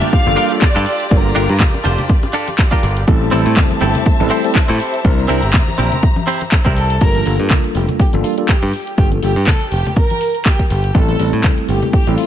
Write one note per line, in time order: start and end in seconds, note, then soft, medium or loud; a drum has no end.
0.00 0.23 G3 medium
0.00 0.23 A#3 medium
0.00 0.13 D4 medium
0.00 0.23 D4 medium
0.00 0.13 F4 medium
0.00 0.23 F4 medium
0.00 3.04 F4 medium
0.00 0.13 G4 medium
0.00 6.98 G4 medium
0.00 0.13 A#4 medium
0.00 3.04 D5 medium
0.00 0.24 A5 medium
0.00 closed hi-hat medium
0.00 low conga medium
0.00 shaker soft
0.12 0.58 F5 loud
0.12 muted picked electric bass stroke soft
0.12 kick loud
0.12 closed hi-hat medium
0.12 shaker soft
0.26 0.35 G1 loud
0.26 0.48 G3 loud
0.26 0.48 A#3 medium
0.26 0.48 D4 medium
0.26 0.48 F4 medium
0.26 0.48 A4 loud
0.26 high conga medium
0.26 shaker soft
0.36 0.51 D4 loud
0.36 0.51 F4 loud
0.36 0.51 G4 loud
0.36 0.51 A#4 loud
0.36 open hi-hat loud
0.36 shaker medium
0.51 0.63 G3 medium
0.51 0.63 A#3 medium
0.51 0.64 D4 medium
0.51 0.64 F4 medium
0.51 0.64 A4 loud
0.51 closed hi-hat medium
0.51 shaker soft
0.62 1.08 D5 loud
0.62 kick loud
0.62 clap loud
0.62 closed hi-hat soft
0.62 shaker soft
0.75 0.84 G2 loud
0.75 1.05 D4 medium
0.75 1.06 F4 medium
0.75 1.06 G4 medium
0.75 1.06 A4 loud
0.75 shaker soft
0.86 open hi-hat loud
0.86 shaker medium
1.00 closed hi-hat medium
1.00 shaker soft
1.11 1.31 G1 loud
1.11 1.33 G3 medium
1.11 1.33 A#3 medium
1.11 1.33 D4 medium
1.11 1.33 F4 medium
1.11 1.33 A4 medium
1.11 1.85 A#4 loud
1.11 kick loud
1.11 closed hi-hat medium
1.11 shaker soft
1.25 shaker soft
1.35 1.47 G1 medium
1.35 1.45 G3 medium
1.35 1.45 A#3 medium
1.35 1.60 D4 loud
1.35 1.45 D4 medium
1.35 1.60 F4 loud
1.35 1.45 F4 medium
1.35 1.60 G4 loud
1.35 1.46 A4 medium
1.35 1.61 A#4 loud
1.35 open hi-hat loud
1.35 shaker medium
1.49 1.58 G2 medium
1.49 closed hi-hat medium
1.49 shaker soft
1.59 kick loud
1.59 clap loud
1.59 closed hi-hat medium
1.59 low conga medium
1.59 shaker soft
1.74 muted conga medium
1.74 high conga medium
1.74 shaker soft
1.84 1.96 F1 medium
1.84 2.09 D4 medium
1.84 2.09 F4 medium
1.84 2.09 G4 medium
1.84 2.10 C5 loud
1.84 open hi-hat loud
1.84 muted conga medium
1.84 shaker medium
1.98 closed hi-hat medium
1.98 low conga medium
1.98 shaker soft
2.09 kick loud
2.09 closed hi-hat medium
2.09 shaker soft
2.23 muted conga medium
2.23 high conga medium
2.23 shaker soft
2.33 2.47 D4 loud
2.33 2.48 F4 medium
2.33 2.48 G4 loud
2.33 2.48 A4 loud
2.33 open hi-hat loud
2.33 shaker medium
2.48 closed hi-hat medium
2.48 muted conga soft
2.48 shaker soft
2.58 muted clean electric guitar stroke soft
2.58 kick loud
2.58 clap loud
2.58 closed hi-hat medium
2.58 shaker soft
2.71 3.02 D4 medium
2.71 3.02 F4 medium
2.71 3.02 G4 medium
2.71 3.03 A#4 loud
2.71 kick medium
2.71 shaker soft
2.83 3.03 G1 medium
2.83 open hi-hat loud
2.83 shaker medium
2.97 closed hi-hat medium
2.97 shaker soft
3.07 3.28 A1 loud
3.07 3.30 G3 medium
3.07 3.30 A3 medium
3.07 3.30 C4 medium
3.07 3.30 E4 medium
3.07 3.30 A4 loud
3.07 6.98 C5 medium
3.07 6.98 E5 medium
3.07 5.03 A5 loud
3.07 kick loud
3.07 closed hi-hat medium
3.07 shaker soft
3.22 shaker soft
3.31 3.43 A1 medium
3.31 4.16 G3 medium
3.31 4.17 A3 medium
3.31 3.56 C4 loud
3.31 4.17 C4 medium
3.31 3.57 E4 loud
3.31 4.17 E4 medium
3.31 3.57 G4 loud
3.31 3.57 A4 loud
3.31 4.17 A4 medium
3.31 open hi-hat loud
3.31 shaker medium
3.46 3.55 A2 medium
3.46 closed hi-hat medium
3.46 shaker soft
3.57 kick loud
3.57 clap loud
3.57 closed hi-hat medium
3.57 low conga medium
3.57 shaker soft
3.71 muted conga medium
3.71 high conga medium
3.71 shaker soft
3.81 3.93 G1 medium
3.81 4.06 C4 medium
3.81 4.06 E4 medium
3.81 4.06 G4 medium
3.81 4.06 A4 loud
3.81 open hi-hat loud
3.81 muted conga medium
3.81 shaker medium
3.95 closed hi-hat medium
3.95 low conga medium
3.95 shaker soft
4.06 muted picked electric bass stroke soft
4.06 kick loud
4.06 closed hi-hat medium
4.06 shaker medium
4.20 4.29 A1 loud
4.20 4.41 G3 loud
4.20 4.41 A3 medium
4.20 4.41 C4 medium
4.20 4.41 E4 medium
4.20 4.42 A4 loud
4.20 high conga medium
4.20 shaker soft
4.30 4.44 C4 loud
4.30 4.44 E4 loud
4.30 4.45 G4 loud
4.30 4.45 C5 loud
4.30 open hi-hat loud
4.30 shaker medium
4.44 4.57 G3 medium
4.44 4.57 A3 medium
4.44 4.57 C4 medium
4.44 4.57 E4 medium
4.44 4.57 A4 loud
4.44 closed hi-hat medium
4.44 shaker soft
4.55 kick loud
4.55 clap loud
4.55 closed hi-hat medium
4.55 shaker soft
4.68 4.78 A2 loud
4.68 4.99 C4 medium
4.68 4.99 E4 medium
4.68 4.99 G4 medium
4.68 4.99 A4 loud
4.68 shaker soft
4.80 open hi-hat loud
4.80 shaker medium
4.94 closed hi-hat medium
4.94 shaker soft
5.04 5.25 C2 loud
5.04 5.26 G3 medium
5.04 5.27 C4 medium
5.04 5.27 D4 medium
5.04 5.27 E4 medium
5.04 5.27 A#4 medium
5.04 6.99 A#5 medium
5.04 kick loud
5.04 closed hi-hat medium
5.04 shaker soft
5.19 shaker soft
5.28 5.40 C2 medium
5.28 5.39 G3 medium
5.28 5.53 C4 loud
5.28 5.39 C4 medium
5.28 5.39 D4 medium
5.28 5.54 E4 medium
5.28 5.39 E4 medium
5.28 5.54 G4 loud
5.28 5.54 A#4 loud
5.28 5.39 A#4 medium
5.28 open hi-hat loud
5.28 shaker medium
5.42 5.52 G1 medium
5.42 closed hi-hat medium
5.42 shaker soft
5.53 kick loud
5.53 clap loud
5.53 closed hi-hat medium
5.53 low conga medium
5.53 shaker soft
5.67 muted conga medium
5.67 high conga medium
5.67 shaker soft
5.78 5.89 A#1 medium
5.78 6.03 C4 loud
5.78 6.03 E4 medium
5.78 6.03 G4 medium
5.78 6.03 A#4 medium
5.78 open hi-hat loud
5.78 muted conga medium
5.78 shaker medium
5.92 closed hi-hat medium
5.92 low conga loud
5.92 shaker soft
6.03 kick loud
6.03 closed hi-hat medium
6.03 shaker soft
6.16 muted conga medium
6.16 high conga medium
6.16 shaker soft
6.27 6.41 C4 loud
6.27 6.41 E4 loud
6.27 6.41 G4 loud
6.27 6.42 C5 loud
6.27 open hi-hat loud
6.27 shaker medium
6.41 closed hi-hat medium
6.41 muted conga medium
6.41 shaker soft
6.51 muted clean electric guitar stroke soft
6.51 kick loud
6.51 clap loud
6.51 closed hi-hat medium
6.51 shaker soft
6.65 6.98 C2 medium
6.65 6.95 C4 medium
6.65 6.96 E4 medium
6.65 6.96 G4 medium
6.65 6.96 A#4 loud
6.65 kick medium
6.65 shaker soft
6.76 7.00 A4 loud
6.76 open hi-hat loud
6.76 shaker medium
6.90 closed hi-hat medium
6.90 shaker soft
7.01 7.22 G1 medium
7.01 7.23 G3 medium
7.01 7.23 A#3 medium
7.01 7.23 D4 medium
7.01 7.23 F4 medium
7.01 7.24 A4 medium
7.01 7.50 A#4 loud
7.01 kick loud
7.01 closed hi-hat medium
7.01 crash medium
7.01 shaker soft
7.15 closed hi-hat soft
7.15 high conga medium
7.15 shaker soft
7.25 7.37 G1 medium
7.25 8.10 G3 medium
7.25 8.10 A#3 medium
7.25 8.10 D4 medium
7.25 8.10 F4 medium
7.25 8.11 A4 medium
7.25 open hi-hat loud
7.25 shaker medium
7.39 7.48 G2 medium
7.39 closed hi-hat soft
7.39 shaker soft
7.50 kick loud
7.50 clap loud
7.50 closed hi-hat medium
7.50 low conga medium
7.50 shaker soft
7.64 closed hi-hat soft
7.64 shaker soft
7.75 7.86 F1 medium
7.75 7.86 G4 medium
7.75 open hi-hat loud
7.75 shaker medium
7.88 closed hi-hat soft
7.88 low conga medium
7.88 shaker soft
8.00 8.11 G4 medium
8.00 muted picked electric bass stroke soft
8.00 kick loud
8.00 closed hi-hat medium
8.00 shaker soft
8.13 8.22 G1 loud
8.13 8.34 G3 medium
8.13 8.35 A#3 medium
8.13 8.35 D4 medium
8.13 8.35 F4 medium
8.13 8.35 A4 loud
8.13 closed hi-hat soft
8.13 high conga medium
8.13 shaker soft
8.24 8.35 F4 medium
8.24 open hi-hat loud
8.24 shaker medium
8.37 8.50 G3 medium
8.37 8.50 A#3 medium
8.37 8.50 D4 medium
8.37 8.51 F4 medium
8.37 8.51 A4 loud
8.37 closed hi-hat soft
8.37 shaker soft
8.48 8.94 G4 medium
8.48 kick loud
8.48 clap loud
8.48 closed hi-hat medium
8.48 shaker soft
8.62 8.71 G2 loud
8.62 closed hi-hat soft
8.62 shaker soft
8.73 open hi-hat loud
8.73 shaker medium
8.87 closed hi-hat soft
8.87 shaker soft
8.97 9.18 G1 medium
8.97 9.20 G3 medium
8.97 9.20 A#3 medium
8.97 9.20 D4 medium
8.97 9.20 F4 medium
8.97 9.09 G4 loud
8.97 9.20 A4 medium
8.97 kick loud
8.97 closed hi-hat medium
8.97 shaker soft
9.11 closed hi-hat soft
9.11 high conga medium
9.11 shaker soft
9.22 9.34 G1 medium
9.22 9.32 G3 medium
9.22 9.32 A#3 medium
9.22 9.32 D4 medium
9.22 9.32 F4 medium
9.22 9.46 G4 loud
9.22 9.32 A4 medium
9.22 open hi-hat loud
9.22 shaker medium
9.36 9.45 G2 medium
9.36 closed hi-hat soft
9.36 shaker soft
9.47 9.72 A4 loud
9.47 kick loud
9.47 clap loud
9.47 closed hi-hat medium
9.47 low conga medium
9.47 shaker soft
9.61 closed hi-hat soft
9.61 shaker soft
9.72 9.83 F1 medium
9.72 9.95 G4 medium
9.72 open hi-hat loud
9.72 shaker medium
9.85 closed hi-hat soft
9.85 low conga loud
9.85 shaker soft
9.96 10.42 A#4 loud
9.96 kick loud
9.96 closed hi-hat medium
9.96 shaker soft
10.10 closed hi-hat soft
10.10 high conga medium
10.10 shaker soft
10.21 open hi-hat loud
10.21 shaker medium
10.35 closed hi-hat soft
10.35 shaker soft
10.45 10.70 G4 medium
10.45 kick loud
10.45 clap loud
10.45 closed hi-hat medium
10.45 shaker soft
10.59 kick medium
10.59 closed hi-hat soft
10.59 shaker soft
10.70 10.91 G1 medium
10.70 10.93 G4 medium
10.70 open hi-hat loud
10.70 shaker medium
10.84 closed hi-hat soft
10.84 shaker soft
10.94 11.15 A1 medium
10.94 11.17 G3 medium
10.94 11.17 A3 medium
10.94 11.17 C4 medium
10.94 11.17 E4 medium
10.94 11.44 A4 loud
10.94 11.17 A4 medium
10.94 kick loud
10.94 closed hi-hat medium
10.94 shaker soft
11.08 closed hi-hat soft
11.08 high conga medium
11.08 shaker soft
11.18 11.30 A1 medium
11.18 12.03 G3 medium
11.18 12.03 A3 medium
11.18 12.04 C4 medium
11.18 12.04 E4 medium
11.18 12.04 A4 medium
11.18 open hi-hat loud
11.18 shaker medium
11.33 11.42 A2 medium
11.33 closed hi-hat soft
11.33 shaker soft
11.44 kick loud
11.44 clap loud
11.44 closed hi-hat medium
11.44 low conga medium
11.44 shaker soft
11.58 closed hi-hat soft
11.58 shaker soft
11.68 11.80 G1 medium
11.68 11.92 G4 medium
11.68 open hi-hat loud
11.68 shaker medium
11.82 closed hi-hat soft
11.82 low conga medium
11.82 shaker soft
11.93 12.17 G4 medium
11.93 muted picked electric bass stroke soft
11.93 kick loud
11.93 closed hi-hat medium
11.93 shaker soft
12.07 12.16 A1 loud
12.07 12.27 G3 medium
12.07 12.27 A3 medium
12.07 12.27 C4 medium
12.07 12.27 E4 medium
12.07 12.27 A4 loud
12.07 closed hi-hat soft
12.07 high conga medium
12.07 shaker soft
12.18 12.27 F4 medium
12.18 open hi-hat loud
12.18 shaker medium